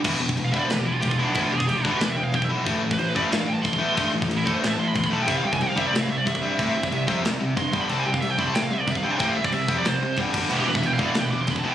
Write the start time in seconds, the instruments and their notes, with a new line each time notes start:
0.04 picked electric bass E1, distorted electric guitar E2 B2 E3, kick, crash
0.19 picked electric bass E1, distorted electric guitar E2 B2
0.29 kick
0.36 picked electric bass E1, distorted electric guitar E2 B2, crash
0.45 lead electric guitar F5
0.51 picked electric bass E1, distorted electric guitar E2 B2 E3, lead electric guitar E5, kick
0.59 lead electric guitar D5
0.64 lead electric guitar C5
0.69 picked electric bass D2, distorted electric guitar E2 B2, lead electric guitar B4, snare, crash
0.80 lead electric guitar G4
0.85 picked electric bass E1, distorted electric guitar E2 B2, lead electric guitar E4
0.93 lead electric guitar F4
1.00 picked electric bass E1, distorted electric guitar E2 B2, lead electric guitar G4, kick, crash
1.09 lead electric guitar F4, kick
1.19 picked electric bass B1, distorted electric guitar E2 B2 E3, lead electric guitar E4
1.24 lead electric guitar D4
1.34 picked electric bass D2, distorted electric guitar E2 B2 E3, lead electric guitar E4, kick, crash
1.44 lead electric guitar F4
1.52 picked electric bass E1, distorted electric guitar E2 B2, lead electric guitar G4
1.58 lead electric guitar G#4, kick
1.68 picked electric bass E1, distorted electric guitar E2 B2, lead electric guitar G4, crash
1.76 lead electric guitar F4
1.83 picked electric bass A1, distorted electric guitar E2 B2 E3, lead electric guitar D4, kick
1.92 lead electric guitar F4
1.98 picked electric bass E1, distorted electric guitar E2 B2, lead electric guitar G4, snare, crash
2.05 lead electric guitar B4
2.10 lead electric guitar E5
2.16 distorted electric guitar E2 B2, picked electric bass E2, lead electric guitar G5
2.24 lead electric guitar F5
2.32 picked electric bass B1, distorted electric guitar E2 B2, lead electric guitar G5, kick, crash
2.42 lead electric guitar E5, kick
2.49 picked electric bass B1, distorted electric guitar E2 B2 E3
2.64 picked electric bass A1, distorted electric guitar A2 E3 A3, kick, crash
2.81 picked electric bass A1, distorted electric guitar A2 E3
2.91 lead electric guitar B4, kick
2.98 picked electric bass A1, distorted electric guitar A2 E3, lead electric guitar C5, crash
3.08 lead electric guitar B4
3.15 picked electric bass A1, distorted electric guitar A2 E3 A3, lead electric guitar D5, kick
3.25 lead electric guitar F5
3.32 picked electric bass G2, distorted electric guitar A2 E3, lead electric guitar E5, snare, crash
3.38 lead electric guitar F5
3.46 picked electric bass A1, distorted electric guitar A2 E3, lead electric guitar G5
3.54 lead electric guitar A5
3.62 picked electric bass A1, distorted electric guitar A2 E3, lead electric guitar C6, kick, crash
3.73 kick
3.77 picked electric bass E2, distorted electric guitar A2 E3 A3
3.95 picked electric bass G2, distorted electric guitar A2 E3 A3, kick, crash
4.12 picked electric bass A1, distorted electric guitar A2 E3
4.22 kick
4.28 picked electric bass A1, distorted electric guitar A2 E3, crash
4.37 lead electric guitar E4
4.44 picked electric bass D2, distorted electric guitar A2 E3 A3, lead electric guitar A4, kick
4.54 lead electric guitar C5
4.61 picked electric bass A1, distorted electric guitar A2 E3, lead electric guitar C5, snare, crash
4.67 lead electric guitar E5
4.73 lead electric guitar A5
4.78 distorted electric guitar A2 E3, picked electric bass A2, lead electric guitar C6
4.88 lead electric guitar B5
4.94 picked electric bass E2, distorted electric guitar A2 E3, lead electric guitar C6, kick, crash
5.04 lead electric guitar B5, kick
5.10 picked electric bass B1, distorted electric guitar A2 E3 A3, lead electric guitar A5
5.22 distorted electric guitar C3 C4, lead electric guitar G5
5.26 picked electric bass C2, distorted electric guitar G3, lead electric guitar E5, kick, crash
5.38 lead electric guitar F5
5.43 picked electric bass C2, distorted electric guitar C3 G3, lead electric guitar G5
5.53 lead electric guitar G#5, kick
5.60 picked electric bass C2, distorted electric guitar C3 G3, lead electric guitar G5, crash
5.69 lead electric guitar F5
5.75 picked electric bass C2, distorted electric guitar C3 G3 C4, lead electric guitar E5, kick
5.87 lead electric guitar D5
5.93 picked electric bass A2, distorted electric guitar C3 G3, lead electric guitar E5, snare, crash
6.01 lead electric guitar F5
6.08 picked electric bass C2, distorted electric guitar C3 G3, lead electric guitar E5
6.18 lead electric guitar D5
6.25 picked electric bass C2, distorted electric guitar C3 G3, lead electric guitar E5, kick, crash
6.35 kick
6.42 picked electric bass G2, distorted electric guitar C3 G3 C4
6.59 picked electric bass A2, distorted electric guitar C3 G3 C4, kick, crash
6.75 picked electric bass C2, distorted electric guitar C3 G3
6.83 kick
6.91 picked electric bass C2, distorted electric guitar C3 G3, crash
7.07 picked electric bass F2, distorted electric guitar C3 G3 C4, kick
7.23 picked electric bass C2, distorted electric guitar C3 G3, snare, crash
7.40 distorted electric guitar C3 G3, picked electric bass C3
7.56 picked electric bass G2, distorted electric guitar C3 G3, lead electric guitar C6, kick, crash
7.72 picked electric bass G1, distorted electric guitar G2 D3 G3, kick
7.81 lead electric guitar B5
7.89 picked electric bass C2, distorted electric guitar C3 G3 C4, lead electric guitar A5, crash
8.00 lead electric guitar G#5
8.06 picked electric bass C2, distorted electric guitar C3 G3, lead electric guitar G5
8.14 lead electric guitar F5, kick
8.21 picked electric bass C2, distorted electric guitar C3 G3, lead electric guitar E5, crash
8.30 lead electric guitar G5
8.38 picked electric bass C2, distorted electric guitar C3 G3 C4, lead electric guitar B5, kick
8.47 lead electric guitar A5
8.54 picked electric bass A2, distorted electric guitar C3 G3, lead electric guitar G5, snare, crash
8.63 lead electric guitar F5
8.70 picked electric bass C2, distorted electric guitar C3 G3, lead electric guitar E5
8.80 lead electric guitar D5
8.87 picked electric bass C2, distorted electric guitar C3 G3, lead electric guitar E5, kick, crash
8.95 lead electric guitar F5, kick
9.03 picked electric bass G2, distorted electric guitar C3 G3 C4, lead electric guitar G5
9.11 lead electric guitar G#5
9.17 picked electric bass A2, distorted electric guitar C3 G3 C4, lead electric guitar G5, kick, crash
9.29 lead electric guitar F5
9.36 picked electric bass C2, distorted electric guitar C3 G3, lead electric guitar E5
9.44 lead electric guitar D5, kick
9.52 picked electric bass C2, distorted electric guitar C3 G3, lead electric guitar E5, crash
9.68 picked electric bass F2, distorted electric guitar C3 G3 C4, kick
9.78 lead electric guitar D5
9.85 picked electric bass C2, distorted electric guitar C3 G3, lead electric guitar C5, snare, crash
10.02 picked electric bass C3, distorted electric guitar C3 G3
10.16 picked electric bass G1, distorted electric guitar G2 D3 G3, kick, crash
10.33 picked electric bass G1, distorted electric guitar G2 D3 G3, kick, crash
10.49 picked electric bass E1, distorted electric guitar E2 B2 E3, crash
10.54 distorted electric guitar E3
10.60 lead electric guitar G4
10.66 picked electric bass E1, distorted electric guitar E2 B2, lead electric guitar B4
10.75 lead electric guitar E5, kick
10.81 picked electric bass E1, distorted electric guitar E2 B2, crash
10.86 lead electric guitar G5
10.94 lead electric guitar F5
10.98 picked electric bass E1, distorted electric guitar E2 B2 E3, kick
11.02 distorted electric guitar E2 B2, lead electric guitar D5
11.10 lead electric guitar F5
11.15 picked electric bass D2, distorted electric guitar E2 B2, lead electric guitar G5, snare, crash
11.25 lead electric guitar B5
11.31 picked electric bass E1, distorted electric guitar E2 B2, lead electric guitar D6
11.41 lead electric guitar C6
11.47 picked electric bass E1, distorted electric guitar E2 B2, lead electric guitar B5, kick, crash
11.56 lead electric guitar A5, kick
11.63 picked electric bass B1, distorted electric guitar E2 B2 E3
11.69 lead electric guitar G5